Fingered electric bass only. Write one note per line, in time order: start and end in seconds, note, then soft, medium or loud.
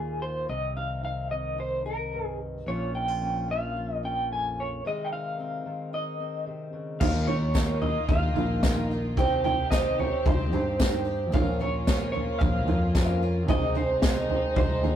0.00 0.45 D#2 medium
0.49 2.63 C2 medium
2.67 4.80 A#1 medium
7.01 7.96 D#2 loud
8.09 8.36 D#2 loud
8.36 9.17 A#1 medium
9.17 10.13 C2 loud
10.26 10.53 C2 loud
10.53 11.34 G2 medium
11.34 12.29 A#1 loud
12.41 12.68 A#1 loud
12.68 13.48 F2 medium
13.48 14.44 C2 loud
14.56 14.84 C2 loud
14.84 14.96 D#2 medium